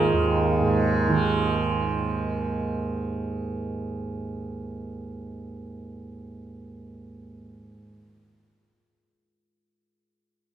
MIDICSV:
0, 0, Header, 1, 3, 480
1, 0, Start_track
1, 0, Tempo, 359281
1, 14092, End_track
2, 0, Start_track
2, 0, Title_t, "Santur"
2, 0, Program_c, 0, 15
2, 0, Note_on_c, 0, 63, 79
2, 0, Note_on_c, 0, 65, 93
2, 0, Note_on_c, 0, 68, 107
2, 0, Note_on_c, 0, 70, 92
2, 1734, Note_off_c, 0, 70, 0
2, 2043, Note_off_c, 0, 68, 0
2, 2633, Note_off_c, 0, 65, 0
2, 3034, Note_off_c, 0, 63, 0
2, 14092, End_track
3, 0, Start_track
3, 0, Title_t, "Tanpura"
3, 0, Program_c, 1, 104
3, 0, Note_on_c, 1, 39, 77
3, 0, Note_on_c, 1, 44, 72
3, 0, Note_on_c, 1, 51, 67
3, 164, Note_off_c, 1, 39, 0
3, 169, Note_on_c, 1, 39, 72
3, 814, Note_off_c, 1, 44, 0
3, 814, Note_on_c, 1, 44, 74
3, 1445, Note_off_c, 1, 51, 0
3, 1445, Note_on_c, 1, 51, 72
3, 9721, Note_off_c, 1, 39, 0
3, 10366, Note_off_c, 1, 44, 0
3, 10997, Note_off_c, 1, 51, 0
3, 14092, End_track
0, 0, End_of_file